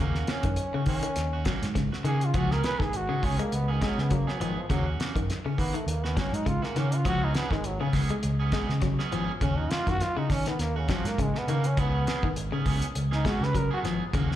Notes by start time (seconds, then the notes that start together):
Already playing: D#2 C#3
0.00 A#3 C#4 F#4
0.15 C#4 F#4, snare
0.27 A#3 C#4 F#4, snare, closed hi-hat
0.43 F#2 D#3, kick, closed hi-hat
0.56 closed hi-hat
0.74 C#3 C#4 F#4, muted fingered electric bass stroke
0.86 D#3 A#3 C#4 F#4, kick, open hi-hat
1.03 D#3, muted fingered electric bass stroke, closed hi-hat
1.16 D#2, snare, closed hi-hat
1.33 C#4 F#4
1.45 F#3 A#3 C#4 F#4, kick, snare, closed hi-hat
1.62 G#2, snare, closed hi-hat
1.75 C#3, kick, snare, closed hi-hat
1.91 F#4, muted fingered electric bass stroke, snare
2.04 C#3 D#3 A#3 C#4 F#4 G#4, closed hi-hat
2.21 F4, closed hi-hat
2.34 C#2 F3 F#3 B3 C#4 F#4 G#4, kick, closed hi-hat
2.51 B3 C#4 G#4 A#4, snare
2.63 B3 C#4 G#4 B4, snare, closed hi-hat
2.79 G#1 D#3 G#4, kick, snare
2.93 F#4, closed hi-hat
3.09 C#3 B3 C#4 G#4
3.22 C#2 F#3 B3 C#4 G#4, kick, open hi-hat
3.39 G#3 A#3, closed hi-hat
3.52 C#2 B3, closed hi-hat
3.68 D#3 B3 C#4 G#4
3.82 F#3 G#3 B3 C#4 G#4, kick, snare, closed hi-hat
3.98 C#3 B3, snare
4.11 F#3 A#3, kick, closed hi-hat
4.27 F#3 B3 C#4 G#4, muted fingered electric bass stroke, snare
4.40 G#1 D#3 F3 F#3 B3 G#4, muted clean electric guitar stroke, closed hi-hat
4.58 F3
4.69 D#2 C#3 F#3 A#3 C#4 F#4, kick, closed hi-hat
4.86 C#4 F#4
5.00 A#3 C#4 F#4, muted fingered electric bass stroke, snare, closed hi-hat
5.15 F#2 D#3, kick, closed hi-hat
5.30 snare, closed hi-hat
5.45 C#3 C#4, muted clean electric guitar stroke, muted fingered electric bass stroke
5.58 D#3 A#3 B3 F#4, kick, open hi-hat
5.74 D#3 A3, muted fingered electric bass stroke, closed hi-hat
5.86 D#2 A#3, closed hi-hat
6.04 B3 C#4 F#4, snare
6.17 F#3 A#3 C#4 F#4, kick, snare, closed hi-hat
6.33 G#2 D#4, closed hi-hat
6.46 C#3 F4, kick, closed hi-hat
6.62 A#3 C#4 F#4, muted fingered electric bass stroke, snare
6.76 C#3 D#3 A#3 C#4 F#4, snare, closed hi-hat
6.92 F4, closed hi-hat
7.05 C#2 F3 F#3 B3 C#4 F#4 G#4, kick, closed hi-hat
7.21 B3 C#4 D#4 G#4
7.34 F#3 B3 C#4 G#4, snare, closed hi-hat
7.50 G#1 D#3 G#3, kick, snare
7.64 F#3, closed hi-hat
7.80 C#3 B3 C#4 G#4
7.93 C#2 F#3 B3 C#4 G#4, kick, snare, open hi-hat
8.09 G#3, closed hi-hat
8.23 C#2, closed hi-hat
8.40 B3 C#4 G#4
8.52 F#3 G#3 B3 C#4 G#4, kick, snare, closed hi-hat
8.69 C#3, snare
8.82 F#3, kick, snare, closed hi-hat
8.99 B3 C#4 G#4, muted fingered electric bass stroke, snare
9.12 G#1 F3 F#3 B3 C#4 G#4, closed hi-hat
9.41 D#2 C#3 C#4 F#4, muted clean electric guitar stroke, kick, closed hi-hat
9.58 C#4 D#4 F#4
9.71 A#3 C#4 F4 F#4, snare, closed hi-hat
9.86 F#2 D#3 F#4, kick, snare, closed hi-hat
10.00 F4, snare, closed hi-hat
10.16 C#3 C#4 D#4 F#4, muted fingered electric bass stroke
10.29 D#3 C#4, kick, snare, open hi-hat
10.46 D#3 B3, muted fingered electric bass stroke, snare, closed hi-hat
10.59 D#2 A#3, snare, closed hi-hat
10.76 C#3 C#4 F#4
10.88 F3 F#3 A#3 C#4 F#4, kick, snare, closed hi-hat
11.04 G#2 A#3, snare, closed hi-hat
11.18 C#3 G#3, kick, closed hi-hat
11.34 B3 C#4, muted clean electric guitar stroke, muted fingered electric bass stroke, snare
11.47 C#3 D#3 A#3 C#4 F#4, closed hi-hat
11.64 C#4, closed hi-hat
11.77 C#2 F#3 B3 C#4 G#4, muted clean electric guitar stroke, kick, closed hi-hat
11.94 B3 C#4 G#4
12.07 F#3 B3 C#4 G#4, snare, closed hi-hat
12.23 G#1 D#3, kick
12.36 closed hi-hat
12.52 C#3 B3 C#4 G#4
12.65 C#2 F#3 B3 C#4 G#4, kick, open hi-hat
12.82 closed hi-hat
12.95 C#2, closed hi-hat
13.11 B3 C#4 D#4 G#4, snare
13.25 F#3 G#3 B3 C#4 F#4 G#4, kick, snare, closed hi-hat
13.41 C#3 B4, snare
13.55 F#3 A#4, kick, closed hi-hat
13.70 B3 C#4 F#4 G#4, muted fingered electric bass stroke
13.83 G#1 F3 F#3 B3 G#4, muted clean electric guitar stroke, snare, closed hi-hat
14.13 D#2 C#3 A#3 C#4 F#4, kick, closed hi-hat, high conga
14.30 C#4 F#4, snare